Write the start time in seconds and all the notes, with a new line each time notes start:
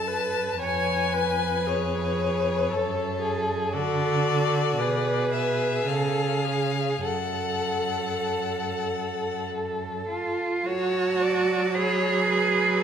Already playing: F#2 A4 A5
0.07 B4
0.60 F2 B4 C#5 G#5
1.13 B4
1.66 G#4 C#5
2.69 F#2 A4
3.21 G#4
3.73 D3 F#4 A4 D5
4.78 B2 G#4 B4
5.33 E5
5.88 C#3 A4 F5
6.45 G#4
7.05 F#2 A4 F#5
10.10 F4
10.66 F#3 F#4 C#5 A5
11.22 D5
11.75 G#4 C#5 B5
12.31 B4